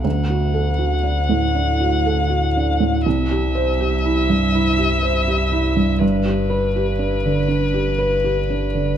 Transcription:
X:1
M:4/4
L:1/8
Q:1/4=80
K:Dmix
V:1 name="Violin"
f8 | e8 | B8 |]
V:2 name="Felt piano"
(3D,, F A (3F D A,, (3D F A (3F D A,, | (3C,, G c (3G E G,, (3E G c (3G E G,, | (3G,, G B (3G D D, (3D G B (3G D D, |]
V:3 name="Sub bass" clef=bass
D,,8 | C,,8 | G,,,8 |]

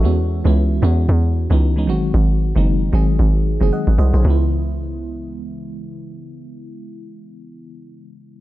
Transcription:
X:1
M:4/4
L:1/16
Q:"Swing 16ths" 1/4=114
K:C#m
V:1 name="FM electric piano"
A z12 z3 | z12 [df]2 [^Bd] [GB]- | [G^B] z12 z3 | z16 |]
V:2 name="FM electric piano"
[E,G,B,CF]2 z [E,G,B,CE]2 z [E,G,B,CF]4 z [E,G,B,CD]2 [E,G,B,CD] [D,F,G,^B,F]2- | [D,F,G,^B,F]2 z [D,F,G,B,D]2 z [D,F,G,B,G]4 z [D,F,G,B,G]2 z3 | [C,E,G,B,E]16- | [C,E,G,B,E]16 |]
V:3 name="Log drum bass" clef=bass
E,,3 C,,3 E,,2 E,,3 C,,3 G,,,2 | G,,,3 F,,,3 G,,,2 G,,,3 F,,, z G,,, ^B,,, =B,,, | C,,16- | C,,16 |]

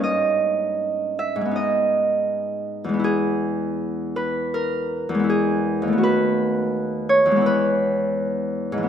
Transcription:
X:1
M:4/4
L:1/8
Q:1/4=81
K:Elyd
V:1 name="Harp"
d3 e d4 | G3 B A2 G2 | B3 c B4 |]
V:2 name="Harp"
[=G,,A,CD]4 [^G,,G,B,D]4 | [E,,G,B,E]6 [E,,G,B,E]2 | [D,,=A,B,F]4 [E,,G,B,E]4 |]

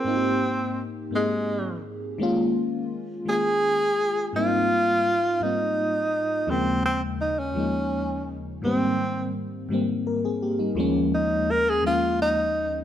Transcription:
X:1
M:6/8
L:1/16
Q:3/8=56
K:Ab
V:1 name="Tenor saxophone"
C4 z2 A,4 z2 | z6 A6 | F6 E6 | C2 C2 E D4- D z2 |
C4 z8 | z2 E2 B A F2 E4 |]
V:2 name="FM electric piano"
z12 | z12 | z12 | z12 |
z8 B [CA] [B,G] [G,E]- | [G,E] z8 z3 |]
V:3 name="FM electric piano"
[A,,B,CEFG]4 z2 [A,,B,CEA]4 z2 | [E,A,B,DF]4 z2 [E,A,B,DF]4 z2 | [A,,G,B,CE]4 z2 [A,,G,B,CF]4 z2 | [E,,D,F,A,B,]4 z2 [E,,F,A,B,E]4 z2 |
[A,,E,G,B,C]4 z2 [A,,E,G,B,C]4 z2 | [E,,F,A,B,D]4 z2 [E,,F,A,B,D]4 z2 |]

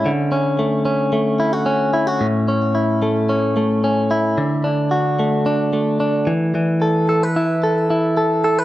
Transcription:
X:1
M:4/4
L:1/16
Q:1/4=111
K:A
V:1 name="Clean electric guitar"
D,2 C2 A,2 C2 A,2 E F C2 E F | A,,2 C2 E2 A,2 C2 A,2 C2 E2 | D,2 D2 F2 A,2 D2 A,2 D2 E,2 | E,2 A2 A B E2 A2 E2 A2 A B |]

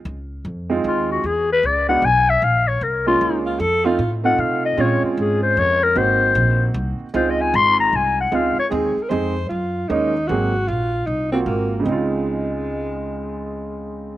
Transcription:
X:1
M:3/4
L:1/16
Q:"Swing" 1/4=153
K:Db
V:1 name="Clarinet"
z8 F2 G2 | ^G2 =B2 =d2 ^f2 ^g2 =e2 | f2 d2 B2 F4 z2 | z6 g2 f2 e2 |
d2 F2 A2 c2 d2 B2 | c8 z4 | (3c2 e2 a2 c'2 b2 a2 g2 | f2 d2 z8 |
z12 | z12 | z12 | z12 |]
V:2 name="Alto saxophone"
z12 | z12 | z8 z2 F2 | =A2 F3 z6 z |
z12 | z12 | z12 | z4 A3 B c4 |
F4 E4 G4 | F4 E2 C2 B,4 | A,12- | A,12 |]
V:3 name="Grand piano"
z6 [A,CEF]6 | z6 [^G,=B,=D^F]2 z4 | z6 [A,B,DF]6 | z2 [=A,CEF]2 z2 [A,CEF]6 |
[A,CDF]8- [A,CDF]2 z2 | [B,CEG]8- [B,CEG]2 z2 | [A,CEF]8- [A,CEF]2 z2 | [A,CEF]2 z2 [A,CEA]2 z2 [A,CEA]2 z2 |
z4 [A,B,DE]2 z2 [G,B,CA]2 z2 | z6 [B,CFG]6 | [D,A,CEF]12- | [D,A,CEF]12 |]
V:4 name="Upright bass" clef=bass
D,,4 F,,4 E,,4 | =E,,4 D,,4 =B,,,4 | B,,,4 C,,4 D,,4 | F,,4 =A,,4 C,4 |
B,,2 z2 A,,4 F,,4 | A,,,4 B,,,4 C,,2 z2 | D,,4 A,,,4 C,,4 | D,,2 z2 E,,2 z2 F,,4 |
G,,4 E,,4 A,,,4 | B,,,4 C,,4 A,,,4 | D,,12- | D,,12 |]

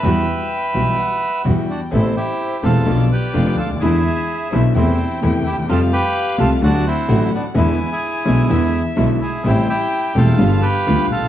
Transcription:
X:1
M:4/4
L:1/16
Q:1/4=127
K:Em
V:1 name="Violin"
g8 f4 g4 | [K:Am] c8 d8 | e8 g8 | f8 ^f8 |
^g8 e6 z2 | g8 f8 |]
V:2 name="Bandoneon"
[Be]12 z2 [DF]2 | [K:Am] [CE]2 [EG]4 [FA]4 [GB]4 [FA]2 | [E^G]6 [CE]2 [CE]4 z2 [E=G]2 | [FA]2 [GB]4 [FA]2 [D^F]2 [CE]4 [B,D]2 |
[B,E]3 [E^G]8 z3 [EG]2 | [CE]2 [EG]4 [FA]4 [GB]4 [FA]2 |]
V:3 name="String section"
[G,EF]2 z4 [G,EF]2 z4 [G,EF]2 z2 | [K:Am] [B,CA]2 z4 [B,CA]2 [B,DF]2 z2 [B,DF]2 z2 | [^G,DE]2 z4 [G,DE]2 [A,CE]2 z2 [A,CE]2 z2 | [A,FG]2 z4 [A,FG]2 [A,D^F]2 z2 [A,DF]2 z2 |
[^G,DE]2 z4 [G,DE]2 [G,DE]2 z2 [G,DE]2 z2 | [A,CG]2 z4 [A,CG]2 [G,B,F]2 z2 [G,B,F]2 z2 |]
V:4 name="Grand piano" clef=bass
[E,,E,G,B,F]2 z4 [B,,,B,,E,G,B,F]2 z4 [E,,E,G,B,F]2 z2 | [K:Am] [A,,,A,,C,A,B,E]2 z4 [E,,,E,,C,A,B,E]2 [B,,,B,,D,F,B,F]2 z2 [F,,,F,,D,F,B,F]2 z/2 ^C,,/2 D,,/2 ^D,,/2 | [E,,D,E,^G,B,E]2 z4 [B,,,B,,D,G,B,E]2 [E,,C,E,A,E]2 z2 [E,,C,E,A,E]2 z/2 D,,/2 ^D,,/2 E,,/2 | [F,,C,F,G,A,F]2 z4 [C,,C,G,A,F]2 [D,,D,^F,A,^F]2 z2 [A,,,A,,D,F,A,F]2 z2 |
[E,,D,E,^G,B,E]2 z4 [B,,,B,,D,G,B,E]2 [E,,D,E,G,B,E]2 z2 [B,,,B,,D,G,B,E]2 z2 | [A,,,A,,C,G,A,E]2 z4 [E,,,E,,C,G,A,E]2 [G,,,G,,D,G,B,F]2 z2 [D,,D,G,B,F]2 z/2 A,,,/2 _B,,,/2 z/2 |]
V:5 name="Double bass" clef=bass
E,,2 z4 B,,,2 z4 E,,2 z2 | [K:Am] A,,,2 z4 E,,,2 B,,,2 z2 F,,,2 D,,2 | E,,2 z4 B,,,2 E,,2 z2 E,,2 ^D,,2 | F,,2 z4 C,,2 D,,2 z2 A,,,2 z2 |
E,,2 z4 B,,,2 E,,2 z2 B,,,2 z2 | A,,,2 z4 E,,,2 G,,,2 z2 D,,2 _B,,,2 |]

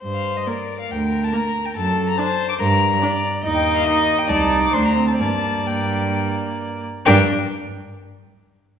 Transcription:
X:1
M:4/4
L:1/16
Q:1/4=137
K:Gm
V:1 name="Violin"
z f2 e d3 f g3 a b3 g | a3 b a3 d' b6 z2 | z g2 f e3 g a3 d' c' b2 a | a4 g8 z4 |
g2 z12 z2 |]
V:2 name="Violin"
c4 B12 | A4 c4 B4 d4 | e8 d4 c4 | d12- d2 z2 |
B2 z12 z2 |]
V:3 name="Viola"
z4 B,4 z4 B,4 | z4 D4 z4 D4 | E4 E4 E4 D2 C2 | B,4 B,8- B,2 z2 |
D2 z12 z2 |]
V:4 name="Cello" clef=bass
G,,4 z4 D,,4 z4 | ^F,,4 z4 G,,4 z4 | E,,8 C,,4 D,,4 | G,,12- G,,2 z2 |
G,,2 z12 z2 |]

